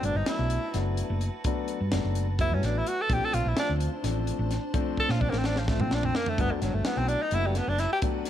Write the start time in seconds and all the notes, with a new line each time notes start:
Already playing: F#3 A3 B3 D4 F#4 B4 A5
0.03 G1 D4, closed hi-hat
0.15 G1 D#4
0.26 F#3 A3 B3 D4 E4, snare, closed hi-hat
0.39 B1
0.50 closed hi-hat
0.74 F#1 F#3 A3 B3 D4, snare, closed hi-hat
0.97 closed hi-hat
1.10 F#1
1.21 closed hi-hat
1.44 F#3 A3 B3 D4, kick, closed hi-hat
1.68 closed hi-hat
1.81 G2
1.92 G1 F#3 A3 B3 D4, snare, closed hi-hat
2.04 F#1
2.15 closed hi-hat
2.39 F#3 A3 B3 E4, kick, closed hi-hat
2.51 G2 C#4
2.63 A1 D4, snare, closed hi-hat
2.78 E4
2.86 F#4, closed hi-hat
3.01 A4
3.09 A#1 F3 A3 C4 D4 C5, kick, closed hi-hat
3.13 G4
3.24 A4
3.33 A#1 F4, closed hi-hat
3.46 A#1 E4
3.56 F3 A3 C4 D4 F4, snare, closed hi-hat
3.69 D2
3.80 closed hi-hat
4.03 A1 F3 A3 C4 D4, snare, closed hi-hat
4.27 closed hi-hat
4.39 A1
4.51 snare, closed hi-hat
4.74 F3 A3 C4 D4, kick, closed hi-hat
4.97 A4, kick
5.09 A#2 F4, snare
5.20 A#1 F3 A3 C4 D4 F4, kick
5.30 A1 A#3, snare
5.38 C4
5.44 D4, snare
5.56 F3, snare
5.67 F3 A3 C4 F4, kick, snare
5.80 A#2 C4, mid tom
5.91 A#1 D4, snare
6.03 C4, floor tom
6.15 A#3, snare
6.26 A3, floor tom
6.38 G1 F#3 A3 B3 D4 F#4 B4, kick, closed hi-hat
6.52 D3
6.62 G1 F#3, snare, closed hi-hat
6.74 G1 A3
6.85 F#3 A3 B3 E4, muted fingered electric bass stroke, snare, closed hi-hat
6.97 B1 C4
7.08 D4, closed hi-hat
7.22 D#4
7.31 F#1 F#3 A3 B3 D4 E4, closed hi-hat
7.46 G3
7.55 B3, snare, closed hi-hat
7.68 F#1 D4
7.78 E4, snare, closed hi-hat
7.93 G4
8.02 F#3 A3 B3 D4, kick, closed hi-hat
8.25 snare, closed hi-hat